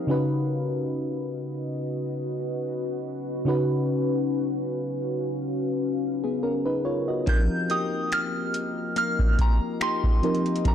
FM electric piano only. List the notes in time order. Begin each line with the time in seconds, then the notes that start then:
Already playing: F3 C4 D#4
0.07 C#3 C#4 D#4 F#4
0.11 B4
3.45 C#3 C#4 D#4 F#4 B4
6.24 B3 G#4
6.43 C#4 A#4
6.66 D#4 B4
6.85 F4 C#5
7.08 F#4 D#5
7.27 F3 C4 D#4 G4 A#4
10.22 F3 C4 D#4 G4 A#4
10.65 F3 C4 D#4 G4 A#4